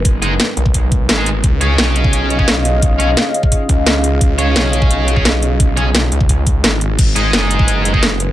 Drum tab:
CC |----------------|----------------|----------------|----------------|
HH |x-x-x-x-x-x-x-x-|x-x-x-x-x-x-x-x-|x-x-x-x-x-x-x-x-|x-x-x-x-x-x-x-x-|
SD |----o-------o---|----o-------o---|----o-------o---|----o-------o---|
BD |o------oo-o-----|o------o---o----|o------oo-o-----|o------o---o----|

CC |----------------|x---------------|
HH |x-x-x-x-x-x-x-x-|x-x-x-x-x-x-x-x-|
SD |----o-------o---|----o-------o---|
BD |o------oo-o-----|o------o---o----|